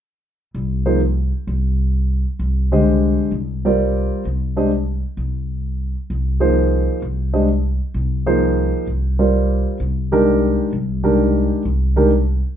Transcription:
0.54 C2
0.86 F3 A#3 D#4 G#4 C5
1.47 C2
2.39 C2
2.72 D3 G#3 G4 C5 D#5
3.31 C2
3.65 G3 C4 F4 A#4 D5
4.25 C2
4.56 G#3 D4 G4 C5 D#5
5.17 C2
6.10 C2
6.40 F3 A#3 D#4 G#4 C5
7.02 C2
7.33 G#3 D4 G4 C5 D#5
7.94 C2
8.26 F3 A#3 D#4 G#4 C5
8.87 C2
9.19 G3 C4 F4 A#4 D5
9.80 C2
10.12 D#3 G#3 D4 G4 A#4
10.72 C2
11.04 D#3 G#3 D4 G4 A#4
11.65 C2
11.96 D#3 G#3 D4 G4 A#4

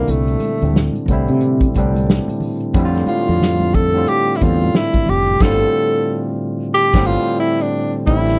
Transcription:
Already playing: A#2 D3 G3 A#3 C4 E4
0.08 C2 A3, closed hi-hat, low conga
0.27 closed hi-hat
0.40 closed hi-hat, high conga
0.61 D2 A2 D3 G3 C4, closed hi-hat
0.65 D4
0.73 snare, high conga
0.93 closed hi-hat, high conga
1.06 C2 A2 D3, kick, closed hi-hat, muted conga, low conga
1.11 G3 C4 E4
1.28 C3, closed hi-hat
1.41 closed hi-hat, muted conga
1.61 kick, closed hi-hat
1.74 C2 A2 D3 G3 C4, kick, closed hi-hat, muted conga, high conga
1.79 D4
1.94 closed hi-hat, high conga
2.07 snare, muted conga
2.28 closed hi-hat, high conga
2.40 open hi-hat, muted conga, low conga
2.61 closed hi-hat
2.74 F2 A2 D3 G3 C4, kick, closed hi-hat, low conga
2.79 E4
2.85 F4
2.94 snare, closed hi-hat
3.06 F4, closed hi-hat, muted conga, high conga
3.28 F2, closed hi-hat
3.40 snare, muted conga, high conga
3.60 closed hi-hat, high conga
3.74 A4, kick, closed hi-hat, muted conga, low conga
3.93 A2 D3 G3 C4, closed hi-hat
3.98 F4
4.06 G4, closed hi-hat, muted conga
4.27 closed hi-hat
4.36 G#2 E4
4.41 E2 D3 G3 C4 F4, kick, closed hi-hat, muted conga, high conga
4.45 A2 A4
4.61 closed hi-hat, high conga
4.73 snare, muted conga
4.77 E4
4.94 kick, closed hi-hat, high conga
5.06 F1 G4, open hi-hat, low conga
5.26 closed hi-hat
5.40 G1 A2 D3 G3 C4 A4, kick, snare, crash
5.45 F4
6.74 G4
6.94 G1 A2 D3 G3 C4, kick, snare, crash
6.98 D4
7.06 F4
7.40 E4
7.62 D4
8.07 A1 A2 D3 G3 C4 E4, kick, closed hi-hat, muted conga, low conga
8.12 D#4
8.18 E4
8.27 snare, closed hi-hat

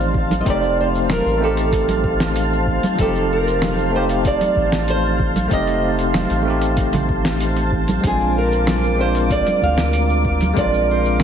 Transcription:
Already playing: A1 A3 C4 D#4 G4 C5 F5 A5
0.00 shaker
0.14 kick
0.31 open hi-hat, high conga, shaker
0.41 A3 D#5
0.45 F1 C4 D#4, kick, open hi-hat, shaker
0.50 G4 D5
0.63 shaker
0.80 C5
0.95 shaker
1.04 C5
1.10 A#4, snare, open hi-hat, high conga, shaker
1.26 A1, shaker
1.38 A3 C4
1.42 D#4 G4 A4
1.57 open hi-hat, shaker
1.72 kick, open hi-hat, shaker
1.88 open hi-hat, high conga, shaker
2.04 kick
2.20 snare, shaker
2.36 open hi-hat, shaker
2.53 shaker
2.67 kick
2.83 open hi-hat, high conga, shaker
2.95 F1 F3 C4, kick, open hi-hat
2.99 D#4 G4 A4, shaker
3.16 shaker
3.33 A#4
3.47 shaker
3.62 snare, open hi-hat, high conga, shaker
3.74 A4
3.79 shaker
3.90 A3 C4
3.95 D#4 G4 C5
4.09 open hi-hat, shaker
4.25 D5, kick, open hi-hat, shaker
4.41 open hi-hat, high conga, shaker
4.56 A1, kick
4.72 snare, shaker
4.88 C5, open hi-hat, shaker
5.05 shaker
5.19 kick
5.36 open hi-hat, high conga, shaker
5.48 F1 A3 C4, kick, open hi-hat
5.52 D#4 G4 D#5, shaker
5.67 open hi-hat, shaker
5.99 open hi-hat, shaker
6.14 snare, open hi-hat, high conga, shaker
6.30 A1, open hi-hat, shaker
6.43 A3 C4
6.47 D#4 G4
6.61 open hi-hat, shaker
6.77 kick, open hi-hat, shaker
6.93 open hi-hat, high conga, low conga, shaker
7.09 kick
7.25 snare, shaker
7.40 open hi-hat, shaker
7.56 open hi-hat, shaker
7.72 A1, kick
7.88 open hi-hat, high conga, shaker
8.01 A#1 G#3 C4 A#4 F5 D6 D7, kick, open hi-hat, shaker
8.05 D4 F4 G#4
8.21 shaker
8.38 A#4
8.52 shaker
8.67 snare, open hi-hat, high conga, shaker
8.84 shaker
8.96 G#3 C4
9.00 D4 F4 C5
9.15 open hi-hat, shaker
9.30 D5, kick, open hi-hat, shaker
9.47 open hi-hat, high conga, shaker
9.62 D2 F5, kick
9.78 snare, shaker
9.93 open hi-hat, shaker
10.10 shaker
10.25 kick
10.41 open hi-hat, high conga, shaker
10.53 A#1 G#3 C4, kick, open hi-hat
10.58 D4 F4 D5, shaker
10.74 shaker
10.91 C5
11.05 shaker
11.20 snare, open hi-hat

